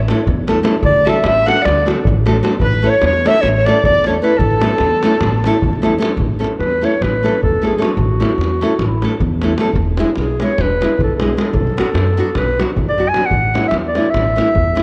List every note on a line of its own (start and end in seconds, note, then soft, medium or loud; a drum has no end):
0.00 0.11 A1 medium
0.08 0.20 A3 medium
0.08 0.20 C#4 medium
0.08 0.21 E4 medium
0.08 0.20 A4 medium
0.08 davul high medium
0.27 0.60 E2 medium
0.27 davul low medium
0.48 0.58 A3 medium
0.48 0.58 C#4 medium
0.48 0.58 E4 medium
0.48 0.59 A4 medium
0.48 davul high medium
0.63 0.74 A3 medium
0.63 0.74 C#4 medium
0.63 0.75 E4 medium
0.63 0.75 A4 medium
0.63 davul high medium
0.74 davul high soft
0.83 1.07 D2 medium
0.83 1.07 D5 medium
0.83 1.11 D5 medium
0.83 davul low medium
0.94 davul high soft
1.05 1.16 A3 medium
1.05 1.16 D4 medium
1.05 1.16 F#4 medium
1.05 1.17 A4 medium
1.05 1.23 E5 medium
1.05 davul high medium
1.09 1.25 E5 medium
1.16 davul high soft
1.23 1.49 A1 medium
1.23 1.47 E5 medium
1.23 1.50 E5 medium
1.23 davul high medium
1.38 davul high soft
1.46 1.57 A3 medium
1.46 1.57 D4 medium
1.46 1.57 F#4 medium
1.46 1.57 A4 medium
1.46 1.64 F#5 medium
1.46 1.67 F#5 loud
1.46 davul high medium
1.59 1.87 D5 medium
1.59 davul high soft
1.65 1.90 D2 medium
1.65 1.89 D5 medium
1.65 davul high medium
1.78 davul high soft
1.86 1.97 A3 medium
1.86 1.98 D4 medium
1.86 1.98 F#4 medium
1.86 1.98 A4 medium
1.86 davul high medium
2.05 2.39 A1 medium
2.05 davul low medium
2.26 2.36 A3 medium
2.26 2.36 D4 medium
2.26 2.36 F#4 medium
2.26 2.37 A4 medium
2.26 davul high medium
2.43 2.53 A3 medium
2.43 2.53 D4 medium
2.43 2.53 F#4 medium
2.43 2.54 A4 medium
2.43 davul high medium
2.53 davul high soft
2.60 2.86 A1 medium
2.60 2.88 B4 loud
2.60 davul low medium
2.64 2.91 B4 loud
2.73 davul high soft
2.82 2.93 A3 medium
2.82 2.94 C#4 medium
2.82 2.94 E4 medium
2.82 2.94 A4 medium
2.87 3.03 C#5 medium
2.87 3.05 C#5 medium
2.94 davul high soft
3.02 3.27 E2 medium
3.02 davul high medium
3.06 3.29 C#5 loud
3.06 3.31 C#5 medium
3.14 davul high soft
3.25 3.35 A3 medium
3.25 3.36 C#4 medium
3.25 3.36 E4 medium
3.25 3.36 A4 medium
3.25 3.43 E5 loud
3.25 davul high medium
3.30 3.50 E5 medium
3.35 davul high soft
3.41 3.68 A1 loud
3.41 3.68 C#5 loud
3.41 davul high medium
3.48 3.74 C#5 medium
3.55 davul high soft
3.66 3.77 A3 medium
3.66 3.77 C#4 medium
3.66 3.77 E4 medium
3.66 3.78 A4 medium
3.66 3.84 D5 loud
3.66 davul high medium
3.72 3.87 D5 medium
3.84 4.17 E2 medium
3.84 4.04 D5 loud
3.84 davul low medium
3.89 4.06 D5 medium
4.04 4.15 A3 medium
4.04 4.15 C#4 medium
4.04 4.16 E4 medium
4.04 4.16 A4 medium
4.04 4.14 C#5 medium
4.04 davul high medium
4.22 4.32 A3 medium
4.22 4.32 C#4 medium
4.22 4.33 E4 medium
4.22 4.33 A4 medium
4.22 4.39 B4 medium
4.22 4.40 B4 medium
4.31 davul high soft
4.37 4.64 A1 medium
4.37 5.83 A4 medium
4.37 davul low medium
4.50 davul high soft
4.60 4.72 A3 medium
4.60 4.72 C#4 medium
4.60 4.73 E4 medium
4.60 4.73 A4 medium
4.60 davul high medium
4.71 davul high soft
4.78 5.05 E2 loud
4.78 davul high medium
4.91 davul high soft
5.03 5.14 A3 medium
5.03 5.14 C#4 medium
5.03 5.15 E4 medium
5.03 5.15 A4 medium
5.03 davul high medium
5.13 davul high soft
5.21 5.47 A1 medium
5.21 davul high medium
5.21 davul low medium
5.44 5.56 A3 medium
5.44 5.56 C#4 medium
5.44 5.56 E4 medium
5.44 5.56 A4 medium
5.44 davul high medium
5.53 davul high soft
5.62 5.96 E2 medium
5.62 davul low medium
5.73 davul high soft
5.82 5.93 A3 medium
5.82 5.93 C#4 medium
5.82 5.94 E4 medium
5.82 5.94 A4 medium
5.82 davul high medium
5.98 6.09 A3 medium
5.98 6.10 C#4 medium
5.98 6.10 E4 medium
5.98 6.10 A4 medium
6.02 davul high medium
6.17 6.42 A1 medium
6.17 davul low medium
6.39 6.50 A3 medium
6.39 6.51 C#4 medium
6.39 6.51 E4 medium
6.39 6.51 A4 medium
6.44 davul high medium
6.53 davul high soft
6.58 6.84 E2 medium
6.58 6.86 B4 medium
6.58 davul high medium
6.81 6.92 A3 medium
6.81 6.93 C#4 medium
6.81 6.93 E4 medium
6.81 6.93 A4 medium
6.81 7.04 C#5 medium
6.81 davul high medium
6.95 davul high soft
7.01 7.26 A1 medium
7.01 7.43 B4 medium
7.01 davul high medium
7.01 davul low medium
7.14 davul high soft
7.23 7.34 A3 medium
7.23 7.34 C#4 medium
7.23 7.35 E4 soft
7.23 7.35 A4 medium
7.23 davul high medium
7.43 7.75 E2 medium
7.43 7.68 A4 medium
7.43 davul low medium
7.62 7.72 A3 medium
7.62 7.72 C#4 medium
7.62 7.73 E4 medium
7.62 7.73 A4 medium
7.62 davul high medium
7.66 7.84 G#4 medium
7.78 7.89 A3 medium
7.78 7.89 C#4 medium
7.78 7.89 E4 medium
7.78 8.88 F#4 medium
7.78 7.89 A4 medium
7.78 davul high medium
7.97 8.22 A1 medium
7.97 davul low medium
8.20 8.30 A3 medium
8.20 8.31 C#4 medium
8.20 8.31 E4 medium
8.20 8.32 A4 medium
8.20 davul high medium
8.32 davul high soft
8.38 8.63 E2 medium
8.38 davul high medium
8.61 8.72 A3 medium
8.61 8.72 C#4 medium
8.61 8.73 E4 medium
8.61 8.73 A4 medium
8.61 davul high medium
8.71 davul high soft
8.79 9.04 A1 medium
8.79 davul high medium
8.79 davul low medium
8.86 9.07 E4 medium
8.91 davul high soft
9.02 9.13 A3 medium
9.02 9.13 C#4 medium
9.02 9.14 E4 medium
9.02 9.14 A4 medium
9.02 davul high medium
9.20 9.53 E2 medium
9.20 davul low medium
9.42 9.52 A3 medium
9.42 9.52 C#4 medium
9.42 9.52 E4 medium
9.42 9.53 A4 medium
9.42 davul high medium
9.58 9.68 A3 medium
9.58 9.69 C#4 medium
9.58 9.69 E4 medium
9.58 9.70 A4 medium
9.58 davul high medium
9.73 10.00 E1 loud
9.73 davul low medium
9.97 10.09 G#3 medium
9.97 10.10 B3 medium
9.97 10.09 E4 medium
9.97 10.10 G#4 medium
9.97 davul high medium
10.07 davul high soft
10.15 10.42 B1 medium
10.15 davul high medium
10.20 10.45 G#4 medium
10.40 10.51 G#3 medium
10.40 10.51 B3 medium
10.40 10.51 E4 medium
10.40 10.52 G#4 medium
10.40 10.63 C#5 medium
10.40 davul high medium
10.50 davul high soft
10.58 10.83 E1 medium
10.58 11.01 B4 medium
10.58 davul high medium
10.58 davul low medium
10.70 davul high soft
10.81 10.92 G#3 medium
10.81 10.92 B3 medium
10.81 10.93 E4 medium
10.81 10.93 G#4 medium
10.81 davul high medium
10.99 11.33 B1 medium
10.99 davul low medium
11.03 11.15 A4 medium
11.15 11.24 A4 medium
11.20 11.30 G#3 medium
11.20 11.30 B3 medium
11.20 11.31 E4 medium
11.20 11.31 G#4 medium
11.20 11.39 G#4 medium
11.20 davul high medium
11.37 11.47 G#3 medium
11.37 11.47 B3 medium
11.37 11.47 E4 medium
11.37 11.48 G#4 medium
11.37 12.39 A4 medium
11.37 davul high medium
11.53 11.78 B1 medium
11.53 davul low medium
11.67 davul high soft
11.77 11.88 F#3 medium
11.77 11.88 B3 medium
11.77 11.89 D4 medium
11.77 11.89 F#4 medium
11.77 davul high medium
11.87 davul high soft
11.94 12.19 F#2 medium
11.94 davul high medium
12.07 davul high soft
12.17 12.28 F#3 medium
12.17 12.29 B3 medium
12.17 12.29 D4 medium
12.17 12.29 F#4 medium
12.35 12.60 B1 medium
12.35 12.61 B4 medium
12.35 davul high medium
12.35 davul low medium
12.48 davul high soft
12.59 12.70 F#3 medium
12.59 12.70 B3 medium
12.59 12.70 D4 medium
12.59 12.70 F#4 medium
12.59 davul high medium
12.70 davul high soft
12.76 13.09 F#2 medium
12.76 davul low medium
12.89 13.10 D5 medium
12.89 davul high soft
12.98 13.08 F#3 medium
12.98 13.08 B3 soft
12.98 13.08 D4 medium
12.98 13.09 F#4 medium
13.09 13.27 G#5 medium
13.14 13.24 F#3 medium
13.14 13.25 B3 medium
13.14 13.25 D4 medium
13.14 13.25 F#4 medium
13.14 davul high medium
13.26 13.65 F#5 medium
13.31 13.56 A1 medium
13.31 davul low medium
13.54 13.65 E3 medium
13.54 13.65 A3 medium
13.54 13.65 C#4 medium
13.54 13.65 E4 medium
13.54 davul high medium
13.64 13.76 E5 medium
13.64 davul high soft
13.71 13.97 E2 medium
13.71 davul high medium
13.88 14.11 D5 medium
13.95 14.06 E3 medium
13.95 14.06 A3 medium
13.95 14.06 C#4 medium
13.95 14.06 E4 medium
13.95 davul high medium
14.06 davul high soft
14.10 14.83 E5 medium
14.14 14.38 A1 medium
14.14 davul high medium
14.14 davul low medium
14.24 davul high soft
14.35 14.46 E3 medium
14.35 14.47 A3 medium
14.35 14.47 C#4 medium
14.35 14.47 E4 medium
14.35 davul high medium
14.54 14.83 E2 medium
14.54 davul low medium
14.75 14.83 E3 medium
14.75 14.83 A3 medium
14.75 14.83 C#4 medium
14.75 14.83 E4 medium
14.75 davul high medium